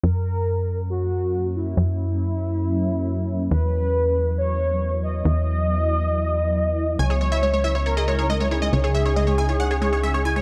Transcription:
X:1
M:4/4
L:1/16
Q:1/4=138
K:F#mix
V:1 name="Supersaw synth"
z16 | z16 | z16 | z16 |
g c c e c c e c c d c c d c c d | c c e c d c g c f c c c e c g c |]
V:2 name="Soft synth lead"
A8 F6 E2- | E16 | B8 c6 d2- | d16 |
c8 A6 G2- | G16 |]
V:3 name="Ambient pad"
[F,A,C]16- | [F,A,C]16 | [F,B,E]16- | [F,B,E]16 |
[C,CDG]16- | [C,CDG]16 |]
V:4 name="Synth arpeggio sound"
z16 | z16 | z16 | z16 |
G, G G, E G, G, E E c G G, G G, G, E G, | G, G G, E G, G, E E c G G, G G, G, E G, |]
V:5 name="Analog synth bass" clef=bass
F,,16 | F,,16 | E,,16 | E,,16 |
C,,16 | C,,16 |]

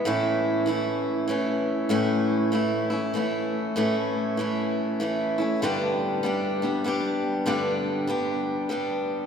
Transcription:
X:1
M:3/4
L:1/8
Q:"Swing" 1/4=97
K:A
V:1 name="Steel-string acoustic guitar"
[A,,E,A,CE]2 [E,A,CE]2 [E,A,CE]2 | [A,,E,A,CE]2 [E,A,CE] [A,CE] [E,A,CE]2 | [A,,E,A,CE]2 [E,A,CE]2 [E,A,CE] [A,CE] | [=G,,D,=G,B,D=G]2 [G,B,DG] [G,B,DG] [G,B,DG]2 |
[=G,,D,=G,B,D=G]2 [G,B,DG]2 [G,B,DG]2 |]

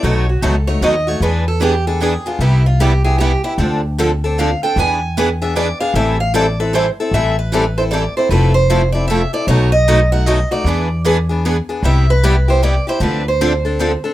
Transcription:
X:1
M:3/4
L:1/8
Q:"Swing" 1/4=153
K:Am
V:1 name="Steel-string acoustic guitar"
^c ^F A c ^d c | B A G A ^G F | E F G ^G =G E | z4 f g |
^g3 e d f | e f d B c z | e B2 c d c | B c2 d e d |
^c ^d2 ^f d =d- | d2 z4 | e B2 c d c | B c4 z |]
V:2 name="Steel-string acoustic guitar"
[B,,^F,A,^D^F] z [B,,F,A,DF] [A,DF] [B,,F,A,DF] [A,DF] | [E,B,D^G] z [E,B,DG] [B,DG] [E,B,DG] [B,DG] | [C,G,B,EG] z [C,G,B,EG] [B,EG] [C,G,B,EG] [B,EG] | [D,F,CDA] z [D,F,CDA] [CDA] [D,F,CDA] [CDA] |
[E,B,D^G] z [E,B,DG] [B,DG] [E,B,DG] [B,DG] | [E,G,CEA] z [E,G,CEA] [CEA] [E,G,CEA] [CEA] | [E,G,CEA] z [E,G,CEA] [CEA] [E,G,CEA] [CEA] | [F,CEA] z [F,CEA] [CEA] [F,CEA] [CEA] |
[B,,^F,A,^D^F] z [B,,F,A,DF] [A,DF] [B,,F,A,DF] [A,DF] | [E,B,D^G] z [E,B,DG] [B,DG] [E,B,DG] [B,DG] | [C,G,B,EG] z [C,G,B,EG] [B,EG] [C,G,B,EG] [B,EG] | [D,F,CDA] z [D,F,CDA] [CDA] [D,F,CDA] [CDA] |]
V:3 name="Steel-string acoustic guitar"
[B,,^D,^F,B,^DA] z [B,,D,F,B,DA] z [B,,D,F,B,DA] z | [E,B,D^GB] z [E,B,DGB] z [E,B,DGB] z | [C,G,B,EG] z [C,G,B,EG] z [C,G,B,EG] z | [D,F,CDA] z [D,F,CDA] z [D,F,CDA] z |
[E,B,D^GB] z [E,B,DGB] z [E,B,DGB] z | [E,G,CEA] z [E,G,CEA] z [E,G,CEA] z | [E,G,CEA] z [E,G,CEA] z [E,G,CEA] z | [F,A,CEA] z [F,A,CEA] z [F,A,CEA] z |
[B,,^D,^F,B,^DA] z [B,,D,F,B,DA] z [B,,D,F,B,DA] z | [E,B,D^GB] z [E,B,DGB] z [E,B,DGB] z | [C,G,B,EG] z [C,G,B,EG] z [C,G,B,EG] z | [D,F,CDA] z [D,F,CDA] z [D,F,CDA] z |]
V:4 name="Upright bass" clef=bass
B,,,2 ^C,,2 ^D,,2 | E,,6 | C,,6 | D,,6 |
E,,6 | A,,,6 | A,,,6 | F,,,6 |
B,,,6 | E,,6 | C,,6 | D,,6 |]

